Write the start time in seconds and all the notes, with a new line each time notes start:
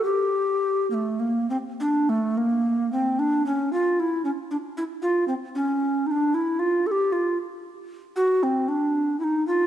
0.05 G4
0.90 A3 A#3
1.20 A#3
1.50 C4
1.80 D4
2.09 A3
2.37 A#3
2.92 C4
3.19 D4
3.46 C#4
3.73 F4
4.00 E4
4.25 C#4
4.51 D4
4.77 E4
5.02 F4
5.28 C4
5.55 C#4
6.06 D#4
6.11 D4
6.34 E4
6.59 F4
6.87 A4
6.91 G4
7.12 F4
8.16 F#4
8.43 C4
8.68 D4
9.19 E4
9.24 D#4
9.47 F4